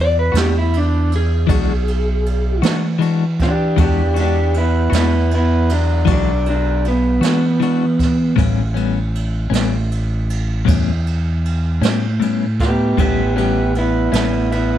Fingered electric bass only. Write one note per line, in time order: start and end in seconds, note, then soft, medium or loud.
0.00 0.30 E2 medium
0.34 1.44 E2 medium
1.49 2.59 B1 medium
2.62 3.73 E3 medium
3.78 4.89 E2 medium
4.92 6.03 E2 medium
6.07 7.18 B1 medium
7.21 8.33 E3 medium
8.38 9.49 A1 medium
9.51 10.62 A1 medium
10.68 11.79 E2 medium
11.81 12.93 A2 medium
12.98 14.09 A1 medium
14.12 14.78 A1 medium